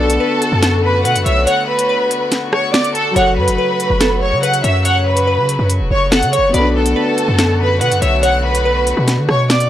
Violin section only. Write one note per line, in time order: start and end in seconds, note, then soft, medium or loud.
0.00 0.80 A4 medium
0.00 0.80 A5 medium
0.84 1.01 B4 medium
0.84 1.01 B5 medium
1.05 1.22 F#5 medium
1.05 1.22 F#6 medium
1.26 1.43 E5 medium
1.26 1.43 E6 medium
1.47 1.64 F#5 medium
1.47 1.64 F#6 medium
1.68 2.28 B4 medium
1.68 2.28 B5 medium
2.53 2.70 C#5 medium
2.53 2.70 C#6 medium
2.73 2.90 D5 medium
2.73 2.91 D6 medium
2.95 3.12 A4 medium
2.95 3.12 A5 medium
3.17 3.33 F#5 loud
3.17 3.34 F#6 medium
3.37 4.18 B4 medium
3.37 4.18 B5 medium
4.22 4.39 C#5 medium
4.22 4.39 C#6 medium
4.43 4.60 F#5 medium
4.43 4.60 F#6 medium
4.64 4.81 E5 medium
4.64 4.81 E6 medium
4.85 5.02 F#5 medium
4.85 5.03 F#6 medium
5.06 5.66 B4 medium
5.06 5.66 B5 medium
5.91 6.08 C#5 medium
5.91 6.08 C#6 medium
6.12 6.29 F#5 medium
6.12 6.29 F#6 medium
6.33 6.50 C#5 medium
6.33 6.51 C#6 medium
6.54 6.71 B4 loud
6.54 6.71 B5 medium
6.76 7.56 A4 medium
6.76 7.56 A5 medium
7.60 7.77 B4 medium
7.60 7.77 B5 medium
7.81 7.98 F#5 medium
7.81 7.98 F#6 medium
8.02 8.19 E5 medium
8.02 8.19 E6 medium
8.23 8.40 F#5 loud
8.23 8.40 F#6 medium
8.44 9.04 B4 medium
8.44 9.04 B5 medium
9.29 9.46 C#5 medium
9.29 9.46 C#6 medium
9.49 9.67 D5 medium
9.49 9.67 D6 medium